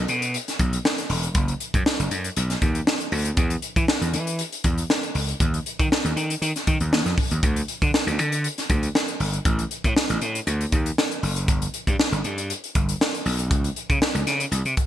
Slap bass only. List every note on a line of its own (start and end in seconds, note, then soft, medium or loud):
0.09 0.36 B2 loud
0.59 0.77 B1 medium
1.09 1.27 E1 medium
1.35 1.53 F#1 loud
1.74 1.82 F#2 loud
1.99 2.08 F#1 medium
2.11 2.28 F#2 loud
2.37 2.54 B1 loud
2.62 2.79 D#2 medium
3.12 3.30 D2 medium
3.37 3.55 E2 loud
3.76 3.85 E3 loud
4.01 4.15 E2 medium
4.13 4.41 E3 loud
4.64 4.82 E2 medium
5.15 5.33 C#2 medium
5.40 5.58 D#2 loud
5.79 5.87 D#3 loud
6.04 6.13 D#2 medium
6.16 6.34 D#3 loud
6.42 6.51 D#3 loud
6.67 6.77 D#3 medium
6.81 6.89 D#2 medium
6.92 7.02 D#2 medium
7.06 7.14 F2 medium
7.31 7.39 D#2 medium
7.43 7.61 D2 loud
7.82 7.90 D3 loud
8.07 8.19 D2 medium
8.19 8.46 D3 loud
8.70 8.87 D2 medium
9.20 9.38 G1 medium
9.45 9.63 A1 loud
9.84 9.93 A2 loud
10.10 10.18 A1 medium
10.21 10.39 A2 loud
10.47 10.65 D2 loud
10.72 10.90 D#2 medium
11.23 11.48 F#1 medium
11.48 11.66 G1 loud
11.87 11.95 G2 loud
12.12 12.20 G1 loud
12.24 12.51 G2 loud
12.75 12.93 G1 medium
13.26 13.51 B1 medium
13.51 13.69 C#2 loud
13.89 13.98 C#3 medium
14.15 14.23 C#2 loud
14.26 14.44 C#3 loud
14.51 14.61 C2 loud
14.65 14.73 C3 medium